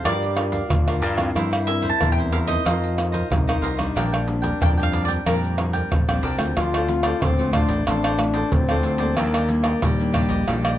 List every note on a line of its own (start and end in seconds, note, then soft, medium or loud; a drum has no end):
0.04 0.60 G2 medium
0.04 0.67 G3 medium
0.04 0.24 D4 medium
0.04 0.25 F4 medium
0.04 0.71 G4 medium
0.04 0.35 G4 medium
0.04 0.36 A#4 medium
0.04 0.25 A#4 medium
0.04 0.99 D5 medium
0.04 0.36 D5 medium
0.04 0.36 F5 medium
0.04 pandeiro medium
0.04 tamborim medium
0.04 maracas medium
0.04 surdo medium
0.22 pandeiro soft
0.22 maracas soft
0.37 0.68 D4 medium
0.37 0.68 F4 medium
0.37 0.68 A#4 medium
0.37 muted cavaquinho stroke soft
0.37 pandeiro medium
0.37 tamborim medium
0.52 0.85 A#4 soft
0.52 0.85 D5 medium
0.52 0.84 F5 medium
0.52 pandeiro medium
0.52 maracas medium
0.52 surdo soft
0.69 1.02 D2 medium
0.69 1.32 D3 medium
0.69 1.36 F4 medium
0.69 pandeiro medium
0.69 tamborim medium
0.69 maracas medium
0.69 surdo medium
0.87 1.14 D4 medium
0.87 1.15 F4 medium
0.87 1.15 A#4 medium
0.87 1.01 A#4 soft
0.87 1.02 D5 soft
0.87 1.02 F5 soft
0.87 pandeiro soft
0.87 tamborim medium
0.87 maracas soft
1.02 1.30 G2 medium
1.02 1.17 G4 medium
1.02 1.18 A#4 medium
1.02 1.17 D5 medium
1.02 1.16 F5 medium
1.02 pandeiro medium
1.02 maracas medium
1.17 1.62 C4 medium
1.17 1.62 E4 medium
1.17 1.62 A#4 medium
1.17 1.34 A#4 soft
1.17 1.34 D5 soft
1.17 1.33 F5 medium
1.17 pandeiro medium
1.17 tamborim medium
1.17 maracas medium
1.17 surdo soft
1.35 1.91 G2 medium
1.35 1.98 G3 soft
1.35 2.65 E4 medium
1.35 1.50 E4 medium
1.35 1.51 A#4 medium
1.35 1.51 C5 medium
1.35 1.51 E5 medium
1.35 pandeiro medium
1.35 tamborim medium
1.35 maracas medium
1.35 surdo medium
1.52 1.67 A#4 soft
1.52 1.67 C5 soft
1.52 1.67 E5 soft
1.52 pandeiro soft
1.52 tamborim medium
1.52 maracas soft
1.67 1.98 C4 medium
1.67 1.98 E4 medium
1.67 1.99 A#4 medium
1.67 1.88 E5 medium
1.67 muted cavaquinho stroke soft
1.67 pandeiro medium
1.67 maracas medium
1.82 1.99 A#4 soft
1.82 1.99 C5 medium
1.82 1.98 E5 medium
1.82 pandeiro medium
1.82 maracas medium
1.82 surdo soft
1.90 2.10 A5 medium
2.01 2.56 E2 medium
2.01 2.63 G3 medium
2.01 2.16 E4 soft
2.01 2.16 A#4 medium
2.01 2.16 C5 medium
2.01 2.17 E5 medium
2.01 pandeiro medium
2.01 tamborim medium
2.01 maracas medium
2.01 surdo medium
2.12 2.18 G5 medium
2.18 2.45 C4 medium
2.18 2.45 E4 medium
2.18 2.45 A#4 medium
2.18 2.32 A#4 soft
2.18 2.33 C5 soft
2.18 2.32 E5 soft
2.18 pandeiro soft
2.18 maracas soft
2.32 2.48 E4 soft
2.32 2.48 A#4 medium
2.32 2.47 C5 medium
2.32 2.46 E5 medium
2.32 2.37 F5 medium
2.32 pandeiro medium
2.32 maracas medium
2.32 surdo soft
2.47 2.92 C4 medium
2.47 2.93 D#4 soft
2.47 2.93 A#4 medium
2.47 2.64 A#4 medium
2.47 2.64 C5 medium
2.47 3.58 D#5 medium
2.47 2.63 E5 medium
2.47 pandeiro soft
2.47 maracas medium
2.47 surdo soft
2.65 3.21 F2 medium
2.65 3.28 F3 medium
2.65 2.96 F4 medium
2.65 3.27 F4 medium
2.65 2.97 A#4 medium
2.65 2.97 C5 medium
2.65 2.97 D#5 medium
2.65 pandeiro medium
2.65 tamborim medium
2.65 maracas medium
2.65 surdo medium
2.84 pandeiro soft
2.84 maracas soft
2.98 3.29 C4 medium
2.98 3.29 D#4 medium
2.98 3.29 A#4 medium
2.98 muted cavaquinho stroke soft
2.98 pandeiro medium
2.98 tamborim medium
2.98 maracas medium
3.12 3.46 A#4 medium
3.12 3.45 C5 medium
3.12 3.45 D#5 medium
3.12 pandeiro medium
3.12 maracas medium
3.12 surdo soft
3.31 3.58 C2 medium
3.31 3.93 C3 medium
3.31 3.97 D#4 medium
3.31 pandeiro medium
3.31 tamborim medium
3.31 maracas medium
3.31 surdo medium
3.47 3.75 C4 medium
3.47 3.75 D#4 medium
3.47 3.61 A#4 soft
3.47 3.76 A#4 medium
3.47 3.62 C5 soft
3.47 3.62 D#5 soft
3.47 pandeiro soft
3.47 tamborim medium
3.47 maracas soft
3.62 3.90 C2 medium
3.62 3.78 F4 medium
3.62 3.78 A#4 medium
3.62 3.77 C5 medium
3.62 3.76 D#5 medium
3.62 pandeiro medium
3.62 maracas medium
3.77 4.23 G3 medium
3.77 4.23 C4 medium
3.77 4.23 D4 medium
3.77 3.94 A#4 soft
3.77 3.94 C5 soft
3.77 3.93 D#5 soft
3.77 pandeiro medium
3.77 tamborim medium
3.77 maracas medium
3.77 surdo soft
3.96 4.52 A#1 loud
3.96 4.58 A#2 soft
3.96 4.11 D4 medium
3.96 5.65 D4 medium
3.96 4.11 A#4 medium
3.96 4.11 D5 medium
3.96 4.11 G5 medium
3.96 pandeiro medium
3.96 tamborim medium
3.96 maracas medium
3.96 surdo soft
4.12 4.27 A#4 soft
4.12 4.27 D5 soft
4.12 4.27 G5 medium
4.12 pandeiro soft
4.12 tamborim medium
4.12 maracas soft
4.27 4.72 G3 medium
4.27 4.72 C4 medium
4.27 4.72 D4 medium
4.27 muted cavaquinho stroke soft
4.27 pandeiro medium
4.42 4.60 A#4 soft
4.42 4.59 D5 medium
4.42 4.58 G5 medium
4.42 pandeiro medium
4.42 maracas medium
4.42 surdo soft
4.61 5.17 F2 medium
4.61 5.23 F3 medium
4.61 4.76 D4 medium
4.61 4.76 A#4 medium
4.61 4.77 D5 medium
4.61 4.68 G5 medium
4.61 4.76 G5 medium
4.61 pandeiro medium
4.61 tamborim medium
4.61 maracas medium
4.61 surdo medium
4.78 5.06 G3 medium
4.78 5.06 C4 medium
4.78 5.06 D4 medium
4.78 4.92 A#4 soft
4.78 4.93 D5 soft
4.78 4.93 G5 soft
4.78 pandeiro soft
4.78 maracas soft
4.83 5.03 F5 medium
4.92 5.08 D4 soft
4.92 5.08 A#4 soft
4.92 5.08 D5 soft
4.92 5.07 G5 medium
4.92 pandeiro medium
4.92 maracas medium
4.92 surdo soft
5.05 5.20 G3 medium
5.05 5.20 C4 soft
5.05 5.11 D5 medium
5.05 5.24 G5 medium
5.05 pandeiro medium
5.05 maracas medium
5.05 surdo soft
5.09 5.21 D4 medium
5.09 5.25 A#4 medium
5.09 5.25 D5 medium
5.26 5.82 F2 medium
5.26 5.88 A#2 soft
5.26 5.54 G3 medium
5.26 5.54 C4 medium
5.26 5.57 D4 medium
5.26 5.54 D4 medium
5.26 5.88 A#4 medium
5.26 5.58 A#4 medium
5.26 5.58 D5 medium
5.26 5.58 G5 medium
5.26 pandeiro medium
5.26 tamborim medium
5.26 maracas medium
5.26 surdo soft
5.44 pandeiro soft
5.44 maracas soft
5.58 5.89 G3 medium
5.58 5.89 C4 medium
5.58 5.90 D4 medium
5.58 muted cavaquinho stroke soft
5.58 pandeiro medium
5.58 tamborim medium
5.73 6.07 A#4 soft
5.73 6.06 D5 medium
5.73 6.06 G5 medium
5.73 pandeiro medium
5.73 maracas medium
5.73 surdo soft
5.91 6.06 A1 medium
5.91 6.54 F3 soft
5.91 6.53 C4 medium
5.91 pandeiro medium
5.91 tamborim medium
5.91 maracas medium
5.91 surdo medium
6.08 6.23 A#1 medium
6.08 6.36 G3 medium
6.08 6.36 C4 medium
6.08 6.36 D4 medium
6.08 6.22 A#4 soft
6.08 6.23 D5 soft
6.08 6.23 G5 soft
6.08 pandeiro soft
6.08 tamborim medium
6.08 maracas soft
6.23 6.38 C2 medium
6.23 6.38 D4 medium
6.23 6.39 A#4 medium
6.23 6.39 D5 medium
6.23 6.37 G5 medium
6.23 pandeiro medium
6.38 6.54 D2 medium
6.38 6.83 A3 medium
6.38 6.83 C4 medium
6.38 6.84 F4 medium
6.38 6.56 A#4 soft
6.38 6.55 D5 soft
6.38 6.55 G5 medium
6.38 pandeiro soft
6.38 tamborim medium
6.38 maracas medium
6.38 surdo soft
6.57 7.12 D2 loud
6.57 7.19 D3 soft
6.57 6.72 F4 soft
6.57 7.24 F4 medium
6.57 6.72 A4 medium
6.57 6.73 C5 medium
6.57 6.73 D5 soft
6.57 pandeiro medium
6.57 tamborim medium
6.57 maracas medium
6.57 surdo medium
6.74 6.88 A4 medium
6.74 6.89 C5 medium
6.74 6.89 D5 medium
6.74 pandeiro soft
6.74 tamborim medium
6.74 maracas soft
6.88 7.33 A3 soft
6.88 7.33 C4 soft
6.88 7.33 F4 medium
6.88 muted cavaquinho stroke soft
6.88 pandeiro medium
6.88 maracas medium
7.03 7.21 A4 medium
7.03 7.20 C5 soft
7.03 7.20 D5 medium
7.03 pandeiro medium
7.03 tamborim medium
7.03 maracas medium
7.22 7.63 D2 medium
7.22 7.84 A2 medium
7.22 7.53 C4 medium
7.22 7.52 F4 soft
7.22 7.53 A4 soft
7.22 7.54 C5 medium
7.22 7.54 D5 medium
7.22 pandeiro medium
7.22 tamborim medium
7.22 maracas medium
7.22 surdo medium
7.39 7.82 A3 medium
7.39 7.82 C4 medium
7.39 7.83 F4 medium
7.39 pandeiro soft
7.39 maracas soft
7.53 7.84 D4 medium
7.53 7.69 F4 medium
7.53 7.69 A4 medium
7.53 7.69 C5 medium
7.53 7.68 D5 medium
7.53 pandeiro medium
7.53 tamborim medium
7.53 surdo medium
7.69 7.83 A1 medium
7.69 7.86 A4 medium
7.69 7.86 C5 medium
7.69 7.85 D5 medium
7.69 pandeiro medium
7.69 maracas medium
7.87 8.43 A1 medium
7.87 8.49 D3 medium
7.87 8.15 A3 medium
7.87 8.15 C4 medium
7.87 8.55 D4 medium
7.87 8.02 F4 soft
7.87 8.15 F4 medium
7.87 8.03 A4 soft
7.87 8.03 C5 medium
7.87 8.03 D5 medium
7.87 pandeiro medium
7.87 tamborim medium
7.87 maracas medium
7.87 surdo medium
8.04 8.18 A4 medium
8.04 8.18 C5 medium
8.04 8.19 D5 medium
8.04 pandeiro soft
8.04 tamborim medium
8.04 maracas soft
8.19 8.50 A3 medium
8.19 8.50 C4 soft
8.19 8.50 F4 medium
8.19 muted cavaquinho stroke soft
8.19 pandeiro medium
8.19 tamborim medium
8.19 maracas medium
8.34 8.67 A4 soft
8.34 8.67 C5 medium
8.34 8.66 D5 medium
8.34 pandeiro medium
8.34 maracas medium
8.52 9.18 D2 medium
8.52 9.15 A2 medium
8.52 9.20 C4 medium
8.52 pandeiro medium
8.52 maracas medium
8.52 surdo loud
8.69 8.97 A3 medium
8.69 8.97 C4 medium
8.69 8.97 F4 medium
8.69 8.83 A4 medium
8.69 8.83 C5 medium
8.69 8.84 D5 medium
8.69 pandeiro soft
8.69 tamborim medium
8.69 maracas soft
8.83 8.99 F4 medium
8.83 8.99 A4 medium
8.83 8.99 C5 medium
8.83 8.98 D5 medium
8.83 pandeiro medium
8.83 maracas medium
8.98 9.44 G3 medium
8.98 9.44 A#3 medium
8.98 9.44 D4 medium
8.98 9.16 A4 soft
8.98 9.16 C5 medium
8.98 9.15 D5 medium
8.98 pandeiro medium
8.98 maracas medium
9.17 9.73 D#2 medium
9.17 9.80 D#3 medium
9.17 9.85 A#3 medium
9.17 9.32 D4 medium
9.17 9.33 G4 medium
9.17 9.33 D5 medium
9.17 9.33 D#5 medium
9.17 pandeiro medium
9.17 tamborim medium
9.17 maracas medium
9.17 surdo soft
9.34 9.48 G4 medium
9.34 9.49 D5 medium
9.34 9.48 D#5 medium
9.34 pandeiro soft
9.34 tamborim medium
9.34 maracas soft
9.49 9.80 G3 medium
9.49 9.81 A#3 medium
9.49 9.81 D4 medium
9.49 muted cavaquinho stroke soft
9.49 pandeiro medium
9.49 maracas medium
9.63 9.81 G4 soft
9.63 9.80 D5 medium
9.63 9.81 D#5 medium
9.63 pandeiro medium
9.63 tamborim medium
9.63 maracas medium
9.82 10.25 D#2 medium
9.82 10.45 A#2 medium
9.82 10.78 G3 medium
9.82 10.13 G4 medium
9.82 10.14 D5 medium
9.82 10.14 D#5 medium
9.82 pandeiro medium
9.82 tamborim medium
9.82 maracas medium
9.82 surdo medium
9.99 10.43 G3 medium
9.99 10.44 A#3 medium
9.99 10.44 D4 medium
9.99 pandeiro soft
9.99 maracas soft
10.13 10.29 D4 medium
10.13 10.30 G4 medium
10.13 10.28 D5 medium
10.13 10.29 D#5 medium
10.13 pandeiro medium
10.13 tamborim medium
10.13 maracas medium
10.13 surdo medium
10.29 10.44 A#1 medium
10.29 10.46 G4 medium
10.29 10.45 D5 medium
10.29 10.46 D#5 medium
10.29 pandeiro medium
10.29 maracas medium
10.47 10.78 A#1 medium
10.47 10.78 D#3 medium
10.47 10.76 G3 medium
10.47 10.76 A#3 medium
10.47 10.63 D4 soft
10.47 10.76 D4 medium
10.47 10.63 G4 medium
10.47 10.63 D5 medium
10.47 10.63 D#5 medium
10.47 pandeiro medium
10.47 tamborim medium
10.47 maracas medium
10.47 surdo medium
10.65 10.78 G4 soft
10.65 10.78 D5 medium
10.65 10.78 D#5 medium
10.65 pandeiro soft
10.65 tamborim medium
10.65 maracas soft